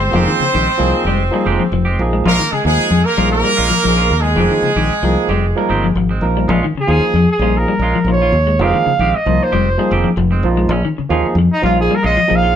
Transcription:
Already playing: fingered electric bass G1, tenor saxophone C4, horn section C5
0.00 clean electric guitar G#3
0.11 fingered electric bass F1, clean electric guitar D#3 F3 G#3 C4, tine electric piano F3 A#3 D#4 G#4
0.15 clean electric guitar G4
0.27 clean electric guitar D#3
0.40 clean electric guitar C#3, muted fingered electric bass stroke
0.54 fingered electric bass A#1, clean electric guitar D#3 G#3 C4 G4
0.68 muted fingered electric bass stroke
0.78 fingered electric bass C2, tine electric piano F3 A#3 D#4 G#4, clean electric guitar F3
1.05 fingered electric bass F1, clean electric guitar G3 G#3 C4 G4
1.31 tine electric piano F3 A#3 D#4 G#4, clean electric guitar G3
1.45 fingered electric bass F1, clean electric guitar D#3 G#3 C4 G4
1.60 clean electric guitar F3
1.72 fingered electric bass F1, clean electric guitar F3
1.85 clean electric guitar G#3 C4 G4
1.99 fingered electric bass A#1, tine electric piano F3 A#3 D#4 G#4
2.13 clean electric guitar G#3
2.25 fingered electric bass A#1, clean electric guitar F3 G#3 C#4 F4, tenor saxophone A#3, horn section A#4
2.39 clean electric guitar D#3
2.52 clean electric guitar C#3, tenor saxophone G#3, horn section G#4, muted fingered electric bass stroke
2.65 fingered electric bass D#2, clean electric guitar D#3, tine electric piano F3 A#3 D#4 G#4, tenor saxophone G#3, horn section G#4
2.79 muted fingered electric bass stroke
2.91 fingered electric bass F2, clean electric guitar F3
3.04 tenor saxophone A#3, horn section A#4
3.17 fingered electric bass A#1, tine electric piano F3 A#3 D#4 G#4, clean electric guitar G3 C#4 F4
3.31 tenor saxophone A#3, horn section A#4
3.44 clean electric guitar G3
3.57 fingered electric bass A#1, clean electric guitar G#3 C#4 F4
3.70 clean electric guitar F3
3.84 fingered electric bass A#1, clean electric guitar F3, tine electric piano F3 A#3 D#4
3.88 tine electric piano G#4
3.97 clean electric guitar C#4 F4
4.11 fingered electric bass D#2
4.21 tenor saxophone G#3, clean electric guitar G#3, horn section G#4
4.36 fingered electric bass F1, clean electric guitar D#3 F3 G#3 C4 G4, tine electric piano F3 A#3
4.40 tine electric piano D#4 G#4
4.50 clean electric guitar D#3
4.62 clean electric guitar C#3, muted fingered electric bass stroke
4.76 fingered electric bass A#1, clean electric guitar D#3 G#3 C4 G4
4.90 muted fingered electric bass stroke
5.03 fingered electric bass C2, tine electric piano F3 A#3 D#4 G#4, clean electric guitar F3
5.29 fingered electric bass F1, clean electric guitar G3 G#3 C4 G4
5.56 tine electric piano F3 A#3 D#4 A#4, clean electric guitar G3
5.69 fingered electric bass G1, clean electric guitar D#3 G#3 C4 G4
5.84 clean electric guitar F3
5.95 fingered electric bass G#1, clean electric guitar F3
6.09 clean electric guitar G#3 C4, muted clean electric guitar stroke
6.21 fingered electric bass A#1, tine electric piano F3 A#3 D#4 A#4
6.37 clean electric guitar G3
6.48 fingered electric bass A#1, clean electric guitar F3 G#3 C#4 F4
6.64 clean electric guitar D#3
6.75 clean electric guitar C#3, muted fingered electric bass stroke
6.81 trumpet G#4
6.87 fingered electric bass D#2, clean electric guitar D#3 C#4 F4, tine electric piano F3 A#3 D#4 G#4
7.00 muted fingered electric bass stroke
7.14 fingered electric bass F2, clean electric guitar F3
7.31 trumpet G#4
7.39 fingered electric bass A#1, tine electric piano F3 A#3 D#4 G#4, clean electric guitar G3 C#4 F4
7.57 trumpet A#4
7.68 clean electric guitar G3
7.79 fingered electric bass A#1, clean electric guitar G#3 C#4 F4
7.95 clean electric guitar F3
8.04 fingered electric bass A#1, tine electric piano F3 A#3 D#4 F4, clean electric guitar F3
8.12 trumpet C#5
8.22 clean electric guitar C#4 F4
8.32 fingered electric bass D#2
8.47 clean electric guitar G#3
8.59 fingered electric bass F1, clean electric guitar D#3 G#3 C4 G4, tine electric piano F3 A#3 D#4 G#4, muted clean electric guitar stroke
8.63 trumpet F5
8.74 clean electric guitar D#3
8.86 clean electric guitar C#3, muted fingered electric bass stroke
8.99 fingered electric bass A#1, clean electric guitar D#3 G#3 C4 G4
9.13 trumpet D#5, muted fingered electric bass stroke
9.26 fingered electric bass C2, tine electric piano F3 A#3 D#4 F4, clean electric guitar F3
9.43 trumpet C5
9.52 fingered electric bass F1, clean electric guitar G3 G#3 C4 G4
9.78 tine electric piano F3 A#3 D#4 G#4, clean electric guitar G3
9.91 fingered electric bass F1, clean electric guitar D#3 C4 G4, muted clean electric guitar stroke
10.04 clean electric guitar F3
10.17 fingered electric bass F1, clean electric guitar F3
10.31 clean electric guitar G#3 C4, muted clean electric guitar stroke
10.43 fingered electric bass A#1, tine electric piano F3 A#3 D#4 F4
10.57 clean electric guitar G#3
10.69 fingered electric bass A#1, clean electric guitar F3 C#4, muted clean electric guitar stroke
10.85 clean electric guitar D#3
10.98 clean electric guitar C#3, muted fingered electric bass stroke
11.09 fingered electric bass D#2, clean electric guitar D#3 C#4 F4, tine electric piano F3 A#3 D#4 G#4
11.23 muted fingered electric bass stroke
11.35 fingered electric bass F2, clean electric guitar F3
11.53 trumpet D#4
11.61 fingered electric bass A#1, tine electric piano F3 A#3 D#4 F4, clean electric guitar G3 C#4 F4, trumpet F4
11.81 trumpet G#4
11.91 clean electric guitar G3, trumpet A#4
12.03 fingered electric bass A#1, clean electric guitar G#3 C#4 F4, trumpet D#5
12.17 clean electric guitar F3
12.27 fingered electric bass A#1, tine electric piano F3 A#3 D#4 G#4, clean electric guitar F3
12.35 trumpet F5
12.43 clean electric guitar C#4 F4

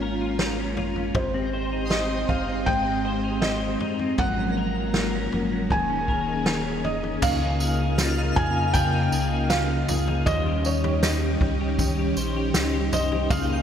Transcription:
Already playing: sub bass G#1, clean electric guitar G#2 C#4 F4, string machine A#3 C#4 F4, felt piano F5
0.02 clean electric guitar A#4
0.21 clean electric guitar F4
0.39 clean electric guitar A#4, snare
0.59 clean electric guitar C#4
0.77 clean electric guitar F4, floor tom
0.96 clean electric guitar C#4, floor tom
1.14 sub bass G#1, string machine G#3 C4 G4, felt piano C5, kick, floor tom
1.34 clean electric guitar C4
1.53 clean electric guitar C5
1.72 clean electric guitar D#4
1.90 clean electric guitar C5, felt piano D#5, snare
2.10 clean electric guitar C4
2.29 sub bass G1, clean electric guitar D#4, felt piano F5, kick, floor tom
2.48 clean electric guitar C4
2.66 sub bass G#1, clean electric guitar G#2, felt piano G5, kick, floor tom
2.86 clean electric guitar C4
3.05 clean electric guitar C5
3.24 clean electric guitar D#4
3.42 clean electric guitar C5, felt piano D#5, snare
3.62 clean electric guitar C4
3.80 clean electric guitar D#4, floor tom
3.99 clean electric guitar C4, floor tom
4.18 sub bass G#1, clean electric guitar G#2, string machine F3 F#3 A#3, felt piano F#5, kick, floor tom
4.38 clean electric guitar C#4
4.57 clean electric guitar A#4
4.94 clean electric guitar A#4, snare
5.14 clean electric guitar C#4
5.32 sub bass F#1, floor tom
5.52 clean electric guitar C#4
5.70 sub bass D#1, string machine D#3 C#4 G#4, clean electric guitar D#3, felt piano G#5, kick, floor tom
5.90 clean electric guitar C#4
6.08 clean electric guitar A#4, kick
6.28 clean electric guitar D#4
6.46 clean electric guitar A#4, snare
6.65 clean electric guitar C#4
6.84 clean electric guitar D#4, felt piano D#5, floor tom
7.03 clean electric guitar C#4, floor tom
7.21 sub bass C#2, string machine C#3 A#3 D#4 F4, clean electric guitar C#3 G#4, felt piano F5, kick, floor tom, crash, tambourine
7.42 clean electric guitar D#4
7.60 clean electric guitar G#4, tambourine
7.80 clean electric guitar D#4
7.98 clean electric guitar F4, snare, tambourine
8.18 clean electric guitar D#4
8.36 sub bass F2, clean electric guitar G#4, felt piano G#5, kick, floor tom
8.56 clean electric guitar D#4
8.73 clean electric guitar C#3 G#4, felt piano G5, kick, floor tom, tambourine
8.94 clean electric guitar D#4
9.12 sub bass C#2, clean electric guitar G#4, tambourine
9.32 clean electric guitar D#4
9.50 clean electric guitar F4, felt piano F5, snare, tambourine
9.70 clean electric guitar D#4
9.89 sub bass C#2, clean electric guitar G#4, floor tom, tambourine
10.08 clean electric guitar D#4, floor tom
10.26 sub bass D#2, clean electric guitar D#3 C5, string machine G3 C#4, felt piano D#5, kick, floor tom, tambourine
10.46 clean electric guitar G4
10.65 felt piano C#5, tambourine
10.84 clean electric guitar G4, floor tom
11.03 clean electric guitar D#4, snare, tambourine
11.22 clean electric guitar G4
11.41 sub bass C#2, kick, floor tom
11.61 clean electric guitar G4
11.79 clean electric guitar D#3, kick, floor tom, tambourine
11.98 clean electric guitar G4
12.16 sub bass A#1, clean electric guitar C5, tambourine
12.36 clean electric guitar G4
12.54 sub bass C#2, clean electric guitar D#4, snare, tambourine
12.74 clean electric guitar G4
12.92 sub bass C2, clean electric guitar C5, felt piano D#5, floor tom, tambourine
13.12 clean electric guitar G4, floor tom
13.30 sub bass C#2, clean electric guitar C#3 G#4, string machine C#3 A#3 F4, felt piano F5, kick, floor tom, tambourine
13.49 clean electric guitar D#4

